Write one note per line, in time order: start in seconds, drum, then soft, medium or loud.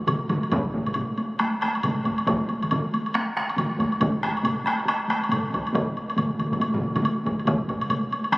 0.00 taiko high soft
0.07 taiko low-mid medium
0.07 taiko mid loud
0.07 taiko high medium
0.07 high woodblock medium
0.29 taiko low-mid medium
0.29 taiko mid medium
0.29 taiko high medium
0.29 high woodblock soft
0.43 taiko high soft
0.43 high woodblock soft
0.52 taiko loud
0.52 taiko low-mid medium
0.52 taiko high medium
0.52 high woodblock soft
0.65 taiko high soft
0.74 taiko medium
0.74 taiko high soft
0.86 taiko low-mid medium
0.86 high woodblock soft
0.94 taiko low-mid medium
0.94 taiko high medium
0.94 high woodblock soft
1.10 taiko high soft
1.18 taiko high soft
1.18 high woodblock soft
1.39 taiko rim medium
1.39 taiko high medium
1.39 high woodblock medium
1.55 taiko high soft
1.61 taiko rim medium
1.61 taiko high soft
1.61 high woodblock soft
1.75 taiko high soft
1.75 high woodblock soft
1.83 taiko low-mid medium
1.83 taiko high medium
1.83 high woodblock medium
1.99 taiko high soft
2.05 taiko medium
2.05 taiko high medium
2.05 high woodblock soft
2.18 taiko high soft
2.18 high woodblock soft
2.27 taiko medium
2.27 taiko mid medium
2.27 taiko high medium
2.27 high woodblock soft
2.42 taiko high soft
2.49 taiko high medium
2.49 high woodblock soft
2.63 taiko mid medium
2.63 taiko high soft
2.63 high woodblock soft
2.71 taiko mid medium
2.71 taiko high medium
2.71 high woodblock soft
2.85 taiko high soft
2.94 taiko high soft
2.94 high woodblock soft
3.06 high woodblock soft
3.14 taiko rim medium
3.14 taiko high medium
3.14 high woodblock medium
3.28 taiko high soft
3.37 taiko rim medium
3.37 taiko high medium
3.49 taiko high soft
3.49 high woodblock soft
3.57 taiko mid medium
3.57 taiko high medium
3.57 high woodblock medium
3.71 taiko high soft
3.79 taiko medium
3.79 taiko high medium
3.79 high woodblock soft
3.92 taiko high soft
3.92 high woodblock soft
4.00 taiko medium
4.00 taiko low-mid medium
4.00 taiko high medium
4.00 high woodblock medium
4.14 taiko high soft
4.22 taiko rim medium
4.22 taiko medium
4.22 taiko high medium
4.22 high woodblock soft
4.35 taiko high soft
4.35 high woodblock soft
4.43 taiko low-mid medium
4.43 taiko high medium
4.43 high woodblock medium
4.56 taiko high soft
4.64 taiko rim medium
4.64 taiko high soft
4.64 high woodblock soft
4.80 high woodblock soft
4.85 taiko rim medium
4.85 taiko high medium
4.85 high woodblock medium
4.99 taiko high soft
5.08 taiko rim medium
5.08 taiko high soft
5.08 high woodblock soft
5.21 taiko high soft
5.21 high woodblock soft
5.29 taiko low-mid medium
5.29 taiko high medium
5.29 high woodblock medium
5.42 taiko high soft
5.51 taiko medium
5.51 taiko high medium
5.51 high woodblock soft
5.65 taiko high soft
5.65 high woodblock soft
5.73 taiko medium
5.73 taiko low-mid loud
5.73 taiko mid medium
5.73 taiko high medium
5.73 high woodblock soft
5.86 taiko high soft
5.95 taiko high soft
5.95 high woodblock soft
6.08 taiko high soft
6.08 high woodblock medium
6.16 taiko low-mid medium
6.16 taiko mid medium
6.16 taiko high medium
6.16 high woodblock medium
6.31 taiko high soft
6.38 taiko low-mid medium
6.38 taiko mid medium
6.38 taiko high soft
6.38 high woodblock soft
6.51 taiko low-mid medium
6.51 taiko mid medium
6.51 taiko high soft
6.51 high woodblock soft
6.60 taiko high medium
6.60 high woodblock medium
6.73 taiko low-mid loud
6.73 taiko mid medium
6.73 taiko high soft
6.82 taiko high soft
6.94 taiko low-mid medium
6.94 taiko mid medium
6.94 taiko high soft
6.94 high woodblock soft
7.02 taiko high medium
7.02 high woodblock medium
7.15 taiko high soft
7.24 taiko medium
7.24 taiko high medium
7.24 high woodblock soft
7.36 taiko high soft
7.36 high woodblock soft
7.45 taiko loud
7.45 taiko low-mid medium
7.45 taiko high medium
7.45 high woodblock soft
7.58 taiko high soft
7.67 taiko medium
7.67 taiko high soft
7.67 high woodblock soft
7.81 taiko low-mid medium
7.81 taiko high soft
7.81 high woodblock soft
7.89 taiko low-mid medium
7.89 taiko high medium
7.89 high woodblock medium
8.03 taiko high soft
8.11 taiko high soft
8.11 high woodblock soft
8.24 high woodblock soft
8.32 taiko rim medium
8.32 taiko high medium
8.32 high woodblock medium